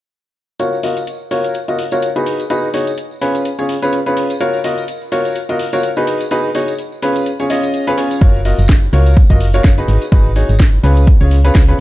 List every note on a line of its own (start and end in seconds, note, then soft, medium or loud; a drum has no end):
0.59 0.76 F4 medium
0.59 0.76 F#4 medium
0.59 0.76 A#4 medium
0.59 0.76 C#5 medium
0.59 closed hi-hat medium
0.59 tambourine medium
0.73 tambourine soft
0.83 1.00 F4 medium
0.83 1.00 F#4 medium
0.83 1.00 A#4 medium
0.83 1.00 D#5 medium
0.83 open hi-hat loud
0.97 closed hi-hat soft
0.97 tambourine medium
1.07 closed hi-hat medium
1.07 tambourine medium
1.20 tambourine soft
1.31 1.57 F4 medium
1.31 1.57 F#4 medium
1.31 1.57 A#4 medium
1.31 1.57 C#5 medium
1.31 open hi-hat medium
1.44 closed hi-hat medium
1.44 tambourine medium
1.54 closed hi-hat medium
1.54 tambourine medium
1.68 1.83 F4 medium
1.68 1.83 F#4 medium
1.68 1.83 A#4 medium
1.68 1.83 D#5 medium
1.68 closed hi-hat soft
1.68 tambourine soft
1.79 open hi-hat medium
1.91 2.07 F4 medium
1.91 2.07 F#4 medium
1.91 2.07 A#4 medium
1.91 2.07 C#5 medium
1.91 closed hi-hat soft
1.91 tambourine medium
2.02 closed hi-hat medium
2.02 tambourine medium
2.16 2.41 D#4 medium
2.16 2.41 F#4 medium
2.16 2.41 G#4 medium
2.16 2.41 B4 medium
2.16 closed hi-hat soft
2.16 tambourine soft
2.26 open hi-hat medium
2.40 closed hi-hat soft
2.40 tambourine medium
2.50 2.67 D#4 medium
2.50 2.67 F#4 medium
2.50 2.67 G#4 medium
2.50 2.67 B4 medium
2.50 closed hi-hat medium
2.50 tambourine medium
2.64 tambourine soft
2.74 2.91 D#4 medium
2.74 2.91 F#4 medium
2.74 2.91 G#4 medium
2.74 2.91 C#5 medium
2.74 open hi-hat loud
2.87 closed hi-hat soft
2.87 tambourine medium
2.98 closed hi-hat medium
2.98 tambourine medium
3.11 tambourine soft
3.21 3.47 C#4 medium
3.21 3.47 F4 medium
3.21 3.47 G#4 medium
3.21 3.47 B4 medium
3.21 open hi-hat medium
3.35 closed hi-hat soft
3.35 tambourine medium
3.45 closed hi-hat medium
3.45 tambourine medium
3.59 3.74 C#4 medium
3.59 3.74 F4 medium
3.59 3.74 G#4 medium
3.59 3.74 C#5 medium
3.59 closed hi-hat soft
3.59 tambourine soft
3.69 open hi-hat loud
3.82 3.97 C#4 medium
3.82 3.97 F4 medium
3.82 3.97 G#4 medium
3.82 3.97 B4 medium
3.82 closed hi-hat soft
3.82 tambourine medium
3.92 closed hi-hat medium
3.92 tambourine medium
4.06 4.32 C#4 medium
4.06 4.31 F4 medium
4.06 4.32 G#4 medium
4.06 4.32 B4 medium
4.06 closed hi-hat soft
4.06 tambourine soft
4.17 open hi-hat medium
4.30 closed hi-hat soft
4.30 tambourine medium
4.40 4.57 F4 medium
4.40 4.57 F#4 medium
4.40 4.57 A#4 medium
4.40 4.57 C#5 medium
4.40 closed hi-hat medium
4.40 tambourine medium
4.54 tambourine soft
4.64 4.81 F4 medium
4.64 4.81 F#4 medium
4.64 4.81 A#4 medium
4.64 4.81 D#5 medium
4.64 open hi-hat loud
4.78 closed hi-hat soft
4.78 tambourine medium
4.88 closed hi-hat medium
4.88 tambourine medium
5.02 tambourine soft
5.12 5.38 F4 medium
5.12 5.38 F#4 medium
5.12 5.38 A#4 medium
5.12 5.38 C#5 medium
5.12 open hi-hat medium
5.25 closed hi-hat soft
5.25 tambourine medium
5.35 closed hi-hat medium
5.35 tambourine medium
5.49 5.64 F4 medium
5.49 5.64 F#4 medium
5.49 5.64 A#4 medium
5.49 5.64 D#5 medium
5.49 closed hi-hat soft
5.49 tambourine soft
5.59 open hi-hat loud
5.73 5.88 F4 medium
5.73 5.88 F#4 medium
5.73 5.88 A#4 medium
5.73 5.88 C#5 medium
5.73 closed hi-hat soft
5.73 tambourine medium
5.83 closed hi-hat medium
5.83 tambourine medium
5.96 6.22 D#4 medium
5.96 6.22 F#4 medium
5.96 6.22 G#4 medium
5.96 6.22 B4 medium
5.96 closed hi-hat soft
5.96 tambourine soft
6.07 open hi-hat medium
6.20 closed hi-hat soft
6.20 tambourine medium
6.31 6.48 D#4 medium
6.31 6.48 F#4 medium
6.31 6.48 G#4 medium
6.31 6.48 B4 medium
6.31 closed hi-hat medium
6.31 tambourine medium
6.44 tambourine soft
6.55 6.72 D#4 medium
6.55 6.72 F#4 medium
6.55 6.72 G#4 medium
6.55 6.72 C#5 medium
6.55 open hi-hat loud
6.68 closed hi-hat soft
6.68 tambourine medium
6.78 closed hi-hat medium
6.78 tambourine medium
6.92 tambourine soft
7.02 7.28 C#4 medium
7.02 7.28 F4 medium
7.02 7.28 G#4 medium
7.02 7.28 B4 medium
7.02 open hi-hat medium
7.15 closed hi-hat soft
7.15 tambourine medium
7.26 closed hi-hat medium
7.26 tambourine medium
7.39 7.48 C#4 medium
7.39 7.48 F4 medium
7.39 7.48 G#4 medium
7.39 7.48 C#5 medium
7.39 closed hi-hat soft
7.39 tambourine soft
7.50 7.84 C#4 medium
7.50 7.84 F4 medium
7.50 7.84 G#4 medium
7.50 7.84 D#5 medium
7.50 open hi-hat loud
7.63 closed hi-hat soft
7.63 tambourine medium
7.74 closed hi-hat medium
7.74 tambourine medium
7.87 7.96 C#4 medium
7.87 7.96 F4 medium
7.87 7.96 G#4 medium
7.87 7.96 B4 loud
7.87 closed hi-hat soft
7.87 tambourine soft
7.98 8.19 C#4 medium
7.98 8.19 F4 medium
7.98 8.19 G#4 medium
7.98 8.19 C#5 medium
7.98 open hi-hat medium
8.11 closed hi-hat soft
8.11 tambourine medium
8.21 8.53 F#1 loud
8.21 8.38 F4 medium
8.21 8.38 F#4 medium
8.21 8.38 A#4 medium
8.21 8.38 C#5 medium
8.21 kick loud
8.21 closed hi-hat medium
8.35 tambourine soft
8.45 8.62 F4 medium
8.45 8.62 F#4 medium
8.45 8.62 A#4 medium
8.45 8.62 D#5 medium
8.45 open hi-hat loud
8.59 8.89 F#1 medium
8.59 closed hi-hat soft
8.59 tambourine medium
8.69 kick loud
8.69 snare loud
8.69 closed hi-hat medium
8.84 tambourine soft
8.93 9.25 C#2 medium
8.93 9.19 F4 medium
8.93 9.18 F#4 medium
8.93 9.19 A#4 medium
8.93 9.18 C#5 medium
8.93 open hi-hat medium
9.06 closed hi-hat soft
9.06 tambourine medium
9.16 kick loud
9.16 closed hi-hat medium
9.16 tambourine medium
9.30 9.60 F#1 medium
9.30 9.45 F4 medium
9.30 9.45 F#4 medium
9.30 9.45 A#4 medium
9.30 9.45 D#5 medium
9.30 kick medium
9.30 closed hi-hat soft
9.30 tambourine soft
9.41 open hi-hat medium
9.53 9.69 F4 medium
9.53 9.69 F#4 medium
9.53 9.69 A#4 medium
9.53 9.69 C#5 medium
9.53 closed hi-hat soft
9.53 tambourine medium
9.64 9.83 F#1 medium
9.64 kick loud
9.64 snare loud
9.64 closed hi-hat medium
9.64 tambourine medium
9.78 10.03 D#4 medium
9.78 10.03 F#4 medium
9.78 10.03 G#4 medium
9.78 10.03 B4 medium
9.78 closed hi-hat soft
9.78 tambourine soft
9.88 9.98 G#1 medium
9.88 open hi-hat medium
10.02 closed hi-hat soft
10.02 tambourine medium
10.12 10.44 G#1 loud
10.12 10.29 D#4 medium
10.12 10.29 F#4 medium
10.12 10.29 G#4 medium
10.12 10.29 B4 medium
10.12 kick loud
10.12 closed hi-hat medium
10.12 tambourine medium
10.26 tambourine soft
10.36 10.53 D#4 medium
10.36 10.53 F#4 medium
10.36 10.53 G#4 medium
10.36 10.53 C#5 medium
10.36 open hi-hat medium
10.49 10.79 G#1 medium
10.49 closed hi-hat soft
10.49 tambourine medium
10.60 kick loud
10.60 snare loud
10.60 closed hi-hat medium
10.73 tambourine soft
10.83 11.15 C#2 loud
10.83 11.09 C#4 medium
10.83 11.09 F4 medium
10.83 11.09 G#4 medium
10.83 11.09 B4 medium
10.83 open hi-hat medium
10.97 closed hi-hat soft
10.97 tambourine medium
11.07 kick loud
11.07 closed hi-hat medium
11.07 tambourine medium
11.21 11.51 C#2 medium
11.21 11.36 C#4 medium
11.21 11.36 F4 medium
11.21 11.35 G#4 medium
11.21 11.36 C#5 medium
11.21 closed hi-hat soft
11.21 tambourine soft
11.31 open hi-hat loud
11.44 11.59 C#4 medium
11.44 11.59 F4 medium
11.44 11.59 G#4 medium
11.44 11.59 B4 medium
11.44 closed hi-hat soft
11.44 tambourine medium
11.55 11.74 C#2 medium
11.55 kick loud
11.55 snare loud
11.55 closed hi-hat medium
11.55 tambourine medium
11.68 11.80 C#4 medium
11.68 11.80 F4 medium
11.68 11.80 G#4 medium
11.68 11.80 B4 medium
11.68 closed hi-hat soft
11.68 tambourine soft